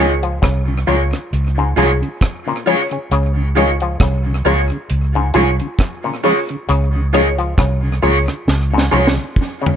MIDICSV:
0, 0, Header, 1, 7, 480
1, 0, Start_track
1, 0, Key_signature, -5, "major"
1, 0, Tempo, 894188
1, 1668, Time_signature, 4, 2, 24, 8
1, 5241, End_track
2, 0, Start_track
2, 0, Title_t, "Clean electric guitar"
2, 0, Program_c, 0, 27
2, 0, Note_on_c, 0, 65, 93
2, 0, Note_on_c, 0, 68, 82
2, 0, Note_on_c, 0, 73, 94
2, 57, Note_off_c, 0, 65, 0
2, 58, Note_off_c, 0, 68, 0
2, 61, Note_off_c, 0, 73, 0
2, 468, Note_on_c, 0, 65, 86
2, 470, Note_on_c, 0, 68, 98
2, 474, Note_on_c, 0, 73, 93
2, 537, Note_off_c, 0, 65, 0
2, 539, Note_off_c, 0, 68, 0
2, 540, Note_off_c, 0, 73, 0
2, 946, Note_on_c, 0, 65, 105
2, 950, Note_on_c, 0, 68, 97
2, 954, Note_on_c, 0, 73, 102
2, 1017, Note_off_c, 0, 65, 0
2, 1019, Note_off_c, 0, 68, 0
2, 1021, Note_off_c, 0, 73, 0
2, 1428, Note_on_c, 0, 65, 81
2, 1435, Note_on_c, 0, 68, 87
2, 1437, Note_on_c, 0, 73, 101
2, 1497, Note_off_c, 0, 65, 0
2, 1501, Note_off_c, 0, 68, 0
2, 1502, Note_off_c, 0, 73, 0
2, 1907, Note_on_c, 0, 65, 79
2, 1910, Note_on_c, 0, 68, 82
2, 1916, Note_on_c, 0, 73, 85
2, 1977, Note_off_c, 0, 65, 0
2, 1978, Note_off_c, 0, 68, 0
2, 1981, Note_off_c, 0, 73, 0
2, 2388, Note_on_c, 0, 65, 81
2, 2393, Note_on_c, 0, 68, 91
2, 2396, Note_on_c, 0, 73, 101
2, 2457, Note_off_c, 0, 65, 0
2, 2460, Note_off_c, 0, 68, 0
2, 2461, Note_off_c, 0, 73, 0
2, 2870, Note_on_c, 0, 65, 81
2, 2875, Note_on_c, 0, 68, 99
2, 2877, Note_on_c, 0, 73, 98
2, 2938, Note_off_c, 0, 65, 0
2, 2940, Note_off_c, 0, 68, 0
2, 2942, Note_off_c, 0, 73, 0
2, 3347, Note_on_c, 0, 65, 86
2, 3351, Note_on_c, 0, 68, 89
2, 3355, Note_on_c, 0, 73, 89
2, 3417, Note_off_c, 0, 65, 0
2, 3418, Note_off_c, 0, 68, 0
2, 3421, Note_off_c, 0, 73, 0
2, 3827, Note_on_c, 0, 65, 86
2, 3831, Note_on_c, 0, 68, 87
2, 3837, Note_on_c, 0, 73, 93
2, 3897, Note_off_c, 0, 65, 0
2, 3899, Note_off_c, 0, 68, 0
2, 3902, Note_off_c, 0, 73, 0
2, 4307, Note_on_c, 0, 65, 84
2, 4313, Note_on_c, 0, 68, 96
2, 4314, Note_on_c, 0, 73, 103
2, 4377, Note_off_c, 0, 65, 0
2, 4380, Note_off_c, 0, 68, 0
2, 4380, Note_off_c, 0, 73, 0
2, 4785, Note_on_c, 0, 65, 89
2, 4789, Note_on_c, 0, 68, 87
2, 4793, Note_on_c, 0, 73, 93
2, 4856, Note_off_c, 0, 65, 0
2, 4858, Note_off_c, 0, 68, 0
2, 4860, Note_off_c, 0, 73, 0
2, 5241, End_track
3, 0, Start_track
3, 0, Title_t, "Synth stab"
3, 0, Program_c, 1, 62
3, 0, Note_on_c, 1, 65, 102
3, 0, Note_on_c, 1, 68, 91
3, 0, Note_on_c, 1, 73, 108
3, 119, Note_off_c, 1, 65, 0
3, 121, Note_off_c, 1, 68, 0
3, 123, Note_off_c, 1, 73, 0
3, 471, Note_on_c, 1, 65, 94
3, 473, Note_on_c, 1, 68, 84
3, 477, Note_on_c, 1, 73, 98
3, 599, Note_off_c, 1, 65, 0
3, 600, Note_off_c, 1, 68, 0
3, 602, Note_off_c, 1, 73, 0
3, 949, Note_on_c, 1, 65, 88
3, 953, Note_on_c, 1, 68, 74
3, 955, Note_on_c, 1, 73, 104
3, 1078, Note_off_c, 1, 65, 0
3, 1080, Note_off_c, 1, 68, 0
3, 1081, Note_off_c, 1, 73, 0
3, 1429, Note_on_c, 1, 65, 93
3, 1434, Note_on_c, 1, 68, 86
3, 1435, Note_on_c, 1, 73, 106
3, 1558, Note_off_c, 1, 65, 0
3, 1560, Note_off_c, 1, 68, 0
3, 1561, Note_off_c, 1, 73, 0
3, 1569, Note_on_c, 1, 68, 46
3, 1570, Note_on_c, 1, 73, 47
3, 1608, Note_off_c, 1, 68, 0
3, 1608, Note_off_c, 1, 73, 0
3, 1912, Note_on_c, 1, 65, 100
3, 1915, Note_on_c, 1, 68, 93
3, 1917, Note_on_c, 1, 73, 115
3, 2039, Note_off_c, 1, 65, 0
3, 2041, Note_off_c, 1, 68, 0
3, 2042, Note_off_c, 1, 73, 0
3, 2389, Note_on_c, 1, 65, 90
3, 2392, Note_on_c, 1, 68, 89
3, 2394, Note_on_c, 1, 73, 100
3, 2518, Note_off_c, 1, 65, 0
3, 2519, Note_off_c, 1, 68, 0
3, 2520, Note_off_c, 1, 73, 0
3, 2867, Note_on_c, 1, 65, 85
3, 2871, Note_on_c, 1, 68, 85
3, 2875, Note_on_c, 1, 73, 94
3, 2997, Note_off_c, 1, 65, 0
3, 2999, Note_off_c, 1, 68, 0
3, 3001, Note_off_c, 1, 73, 0
3, 3347, Note_on_c, 1, 65, 95
3, 3350, Note_on_c, 1, 68, 88
3, 3353, Note_on_c, 1, 73, 97
3, 3477, Note_off_c, 1, 65, 0
3, 3478, Note_off_c, 1, 68, 0
3, 3480, Note_off_c, 1, 73, 0
3, 3829, Note_on_c, 1, 65, 99
3, 3832, Note_on_c, 1, 68, 93
3, 3834, Note_on_c, 1, 73, 113
3, 3958, Note_off_c, 1, 65, 0
3, 3959, Note_off_c, 1, 68, 0
3, 3960, Note_off_c, 1, 73, 0
3, 4308, Note_on_c, 1, 65, 85
3, 4310, Note_on_c, 1, 68, 84
3, 4313, Note_on_c, 1, 73, 102
3, 4437, Note_off_c, 1, 65, 0
3, 4438, Note_off_c, 1, 68, 0
3, 4440, Note_off_c, 1, 73, 0
3, 4784, Note_on_c, 1, 65, 83
3, 4788, Note_on_c, 1, 68, 79
3, 4791, Note_on_c, 1, 73, 101
3, 4916, Note_off_c, 1, 65, 0
3, 4918, Note_off_c, 1, 68, 0
3, 4919, Note_off_c, 1, 73, 0
3, 5241, End_track
4, 0, Start_track
4, 0, Title_t, "Tonewheel organ"
4, 0, Program_c, 2, 16
4, 364, Note_on_c, 2, 49, 63
4, 400, Note_off_c, 2, 49, 0
4, 469, Note_on_c, 2, 53, 81
4, 471, Note_on_c, 2, 56, 75
4, 472, Note_on_c, 2, 61, 85
4, 515, Note_off_c, 2, 53, 0
4, 516, Note_off_c, 2, 56, 0
4, 516, Note_off_c, 2, 61, 0
4, 603, Note_on_c, 2, 49, 61
4, 640, Note_off_c, 2, 49, 0
4, 845, Note_on_c, 2, 49, 64
4, 880, Note_off_c, 2, 49, 0
4, 950, Note_on_c, 2, 53, 79
4, 950, Note_on_c, 2, 56, 69
4, 953, Note_on_c, 2, 61, 85
4, 995, Note_off_c, 2, 56, 0
4, 996, Note_off_c, 2, 53, 0
4, 997, Note_off_c, 2, 61, 0
4, 1083, Note_on_c, 2, 49, 65
4, 1119, Note_off_c, 2, 49, 0
4, 1323, Note_on_c, 2, 49, 58
4, 1359, Note_off_c, 2, 49, 0
4, 1432, Note_on_c, 2, 53, 74
4, 1432, Note_on_c, 2, 56, 72
4, 1433, Note_on_c, 2, 61, 93
4, 1476, Note_off_c, 2, 53, 0
4, 1477, Note_off_c, 2, 56, 0
4, 1477, Note_off_c, 2, 61, 0
4, 1563, Note_on_c, 2, 49, 63
4, 1599, Note_off_c, 2, 49, 0
4, 1805, Note_on_c, 2, 49, 59
4, 1840, Note_off_c, 2, 49, 0
4, 1912, Note_on_c, 2, 53, 81
4, 1913, Note_on_c, 2, 56, 73
4, 1914, Note_on_c, 2, 61, 90
4, 1956, Note_off_c, 2, 53, 0
4, 1957, Note_off_c, 2, 56, 0
4, 1957, Note_off_c, 2, 61, 0
4, 2287, Note_on_c, 2, 49, 57
4, 2321, Note_off_c, 2, 49, 0
4, 2390, Note_on_c, 2, 53, 76
4, 2392, Note_on_c, 2, 56, 76
4, 2394, Note_on_c, 2, 61, 94
4, 2435, Note_off_c, 2, 53, 0
4, 2436, Note_off_c, 2, 56, 0
4, 2437, Note_off_c, 2, 61, 0
4, 2530, Note_on_c, 2, 49, 64
4, 2562, Note_off_c, 2, 49, 0
4, 2767, Note_on_c, 2, 49, 63
4, 2801, Note_off_c, 2, 49, 0
4, 2874, Note_on_c, 2, 56, 77
4, 2875, Note_on_c, 2, 53, 77
4, 2878, Note_on_c, 2, 61, 95
4, 2917, Note_off_c, 2, 56, 0
4, 2918, Note_off_c, 2, 53, 0
4, 2919, Note_off_c, 2, 61, 0
4, 3012, Note_on_c, 2, 49, 64
4, 3044, Note_off_c, 2, 49, 0
4, 3252, Note_on_c, 2, 49, 60
4, 3283, Note_off_c, 2, 49, 0
4, 3355, Note_on_c, 2, 53, 75
4, 3359, Note_on_c, 2, 56, 77
4, 3361, Note_on_c, 2, 61, 87
4, 3398, Note_off_c, 2, 53, 0
4, 3400, Note_off_c, 2, 56, 0
4, 3400, Note_off_c, 2, 61, 0
4, 3490, Note_on_c, 2, 49, 64
4, 3522, Note_off_c, 2, 49, 0
4, 3734, Note_on_c, 2, 49, 55
4, 3764, Note_off_c, 2, 49, 0
4, 3833, Note_on_c, 2, 53, 77
4, 3834, Note_on_c, 2, 56, 68
4, 3836, Note_on_c, 2, 61, 80
4, 3877, Note_off_c, 2, 53, 0
4, 3877, Note_off_c, 2, 56, 0
4, 3878, Note_off_c, 2, 61, 0
4, 4204, Note_on_c, 2, 49, 61
4, 4240, Note_off_c, 2, 49, 0
4, 4306, Note_on_c, 2, 56, 74
4, 4307, Note_on_c, 2, 53, 77
4, 4308, Note_on_c, 2, 61, 84
4, 4353, Note_off_c, 2, 56, 0
4, 4354, Note_off_c, 2, 53, 0
4, 4354, Note_off_c, 2, 61, 0
4, 4443, Note_on_c, 2, 49, 62
4, 4479, Note_off_c, 2, 49, 0
4, 4684, Note_on_c, 2, 49, 66
4, 4720, Note_off_c, 2, 49, 0
4, 4783, Note_on_c, 2, 53, 80
4, 4785, Note_on_c, 2, 56, 69
4, 4787, Note_on_c, 2, 61, 80
4, 4832, Note_off_c, 2, 53, 0
4, 4833, Note_off_c, 2, 56, 0
4, 4834, Note_off_c, 2, 61, 0
4, 4921, Note_on_c, 2, 49, 64
4, 4958, Note_off_c, 2, 49, 0
4, 5168, Note_on_c, 2, 49, 60
4, 5202, Note_off_c, 2, 49, 0
4, 5241, End_track
5, 0, Start_track
5, 0, Title_t, "Clav"
5, 0, Program_c, 3, 7
5, 0, Note_on_c, 3, 51, 85
5, 98, Note_off_c, 3, 51, 0
5, 123, Note_on_c, 3, 53, 77
5, 210, Note_off_c, 3, 53, 0
5, 226, Note_on_c, 3, 49, 77
5, 338, Note_off_c, 3, 49, 0
5, 468, Note_on_c, 3, 46, 85
5, 579, Note_off_c, 3, 46, 0
5, 848, Note_on_c, 3, 44, 83
5, 933, Note_off_c, 3, 44, 0
5, 954, Note_on_c, 3, 44, 82
5, 1063, Note_off_c, 3, 44, 0
5, 1329, Note_on_c, 3, 46, 80
5, 1413, Note_off_c, 3, 46, 0
5, 1434, Note_on_c, 3, 49, 71
5, 1543, Note_off_c, 3, 49, 0
5, 1672, Note_on_c, 3, 49, 99
5, 1781, Note_off_c, 3, 49, 0
5, 1916, Note_on_c, 3, 51, 85
5, 2024, Note_off_c, 3, 51, 0
5, 2049, Note_on_c, 3, 53, 79
5, 2133, Note_off_c, 3, 53, 0
5, 2154, Note_on_c, 3, 49, 76
5, 2262, Note_off_c, 3, 49, 0
5, 2392, Note_on_c, 3, 46, 83
5, 2501, Note_off_c, 3, 46, 0
5, 2766, Note_on_c, 3, 44, 91
5, 2851, Note_off_c, 3, 44, 0
5, 2866, Note_on_c, 3, 44, 84
5, 2978, Note_off_c, 3, 44, 0
5, 3244, Note_on_c, 3, 46, 86
5, 3330, Note_off_c, 3, 46, 0
5, 3349, Note_on_c, 3, 49, 74
5, 3459, Note_off_c, 3, 49, 0
5, 3589, Note_on_c, 3, 49, 98
5, 3699, Note_off_c, 3, 49, 0
5, 3831, Note_on_c, 3, 51, 83
5, 3940, Note_off_c, 3, 51, 0
5, 3964, Note_on_c, 3, 53, 76
5, 4050, Note_off_c, 3, 53, 0
5, 4072, Note_on_c, 3, 49, 73
5, 4181, Note_off_c, 3, 49, 0
5, 4308, Note_on_c, 3, 46, 85
5, 4419, Note_off_c, 3, 46, 0
5, 4689, Note_on_c, 3, 44, 83
5, 4773, Note_off_c, 3, 44, 0
5, 4786, Note_on_c, 3, 44, 81
5, 4898, Note_off_c, 3, 44, 0
5, 5161, Note_on_c, 3, 49, 78
5, 5241, Note_off_c, 3, 49, 0
5, 5241, End_track
6, 0, Start_track
6, 0, Title_t, "Fingered electric bass"
6, 0, Program_c, 4, 33
6, 0, Note_on_c, 4, 37, 109
6, 210, Note_off_c, 4, 37, 0
6, 232, Note_on_c, 4, 36, 91
6, 459, Note_off_c, 4, 36, 0
6, 474, Note_on_c, 4, 37, 90
6, 600, Note_off_c, 4, 37, 0
6, 713, Note_on_c, 4, 37, 105
6, 939, Note_off_c, 4, 37, 0
6, 952, Note_on_c, 4, 36, 97
6, 1079, Note_off_c, 4, 36, 0
6, 1671, Note_on_c, 4, 37, 108
6, 2128, Note_off_c, 4, 37, 0
6, 2149, Note_on_c, 4, 36, 90
6, 2377, Note_off_c, 4, 36, 0
6, 2393, Note_on_c, 4, 37, 87
6, 2519, Note_off_c, 4, 37, 0
6, 2633, Note_on_c, 4, 37, 98
6, 2859, Note_off_c, 4, 37, 0
6, 2873, Note_on_c, 4, 36, 99
6, 2999, Note_off_c, 4, 36, 0
6, 3592, Note_on_c, 4, 37, 115
6, 4048, Note_off_c, 4, 37, 0
6, 4070, Note_on_c, 4, 36, 90
6, 4298, Note_off_c, 4, 36, 0
6, 4314, Note_on_c, 4, 37, 85
6, 4439, Note_off_c, 4, 37, 0
6, 4549, Note_on_c, 4, 37, 104
6, 4778, Note_off_c, 4, 37, 0
6, 4794, Note_on_c, 4, 36, 97
6, 4920, Note_off_c, 4, 36, 0
6, 5241, End_track
7, 0, Start_track
7, 0, Title_t, "Drums"
7, 124, Note_on_c, 9, 42, 58
7, 177, Note_off_c, 9, 42, 0
7, 229, Note_on_c, 9, 36, 97
7, 231, Note_on_c, 9, 42, 97
7, 236, Note_on_c, 9, 37, 111
7, 283, Note_off_c, 9, 36, 0
7, 285, Note_off_c, 9, 42, 0
7, 289, Note_off_c, 9, 37, 0
7, 475, Note_on_c, 9, 42, 67
7, 529, Note_off_c, 9, 42, 0
7, 607, Note_on_c, 9, 42, 50
7, 609, Note_on_c, 9, 37, 68
7, 660, Note_off_c, 9, 42, 0
7, 663, Note_off_c, 9, 37, 0
7, 714, Note_on_c, 9, 42, 82
7, 768, Note_off_c, 9, 42, 0
7, 951, Note_on_c, 9, 42, 83
7, 1005, Note_off_c, 9, 42, 0
7, 1088, Note_on_c, 9, 42, 56
7, 1142, Note_off_c, 9, 42, 0
7, 1188, Note_on_c, 9, 36, 101
7, 1189, Note_on_c, 9, 42, 85
7, 1194, Note_on_c, 9, 37, 106
7, 1241, Note_off_c, 9, 36, 0
7, 1242, Note_off_c, 9, 42, 0
7, 1248, Note_off_c, 9, 37, 0
7, 1432, Note_on_c, 9, 46, 70
7, 1485, Note_off_c, 9, 46, 0
7, 1563, Note_on_c, 9, 42, 54
7, 1616, Note_off_c, 9, 42, 0
7, 1671, Note_on_c, 9, 42, 109
7, 1725, Note_off_c, 9, 42, 0
7, 1915, Note_on_c, 9, 42, 84
7, 1969, Note_off_c, 9, 42, 0
7, 2041, Note_on_c, 9, 42, 56
7, 2095, Note_off_c, 9, 42, 0
7, 2147, Note_on_c, 9, 36, 115
7, 2147, Note_on_c, 9, 42, 90
7, 2152, Note_on_c, 9, 37, 119
7, 2200, Note_off_c, 9, 42, 0
7, 2201, Note_off_c, 9, 36, 0
7, 2205, Note_off_c, 9, 37, 0
7, 2391, Note_on_c, 9, 46, 47
7, 2444, Note_off_c, 9, 46, 0
7, 2522, Note_on_c, 9, 42, 51
7, 2576, Note_off_c, 9, 42, 0
7, 2628, Note_on_c, 9, 42, 89
7, 2682, Note_off_c, 9, 42, 0
7, 2866, Note_on_c, 9, 42, 83
7, 2919, Note_off_c, 9, 42, 0
7, 3004, Note_on_c, 9, 42, 57
7, 3058, Note_off_c, 9, 42, 0
7, 3106, Note_on_c, 9, 36, 103
7, 3108, Note_on_c, 9, 42, 78
7, 3113, Note_on_c, 9, 37, 105
7, 3160, Note_off_c, 9, 36, 0
7, 3162, Note_off_c, 9, 42, 0
7, 3167, Note_off_c, 9, 37, 0
7, 3348, Note_on_c, 9, 46, 73
7, 3402, Note_off_c, 9, 46, 0
7, 3484, Note_on_c, 9, 42, 60
7, 3537, Note_off_c, 9, 42, 0
7, 3591, Note_on_c, 9, 42, 118
7, 3644, Note_off_c, 9, 42, 0
7, 3834, Note_on_c, 9, 42, 82
7, 3887, Note_off_c, 9, 42, 0
7, 3964, Note_on_c, 9, 42, 55
7, 4018, Note_off_c, 9, 42, 0
7, 4068, Note_on_c, 9, 36, 101
7, 4069, Note_on_c, 9, 42, 95
7, 4074, Note_on_c, 9, 37, 111
7, 4122, Note_off_c, 9, 36, 0
7, 4123, Note_off_c, 9, 42, 0
7, 4127, Note_off_c, 9, 37, 0
7, 4314, Note_on_c, 9, 46, 53
7, 4367, Note_off_c, 9, 46, 0
7, 4444, Note_on_c, 9, 42, 47
7, 4446, Note_on_c, 9, 37, 70
7, 4497, Note_off_c, 9, 42, 0
7, 4500, Note_off_c, 9, 37, 0
7, 4552, Note_on_c, 9, 38, 65
7, 4606, Note_off_c, 9, 38, 0
7, 4713, Note_on_c, 9, 38, 62
7, 4766, Note_off_c, 9, 38, 0
7, 4871, Note_on_c, 9, 38, 89
7, 4925, Note_off_c, 9, 38, 0
7, 5026, Note_on_c, 9, 36, 94
7, 5080, Note_off_c, 9, 36, 0
7, 5188, Note_on_c, 9, 43, 104
7, 5241, Note_off_c, 9, 43, 0
7, 5241, End_track
0, 0, End_of_file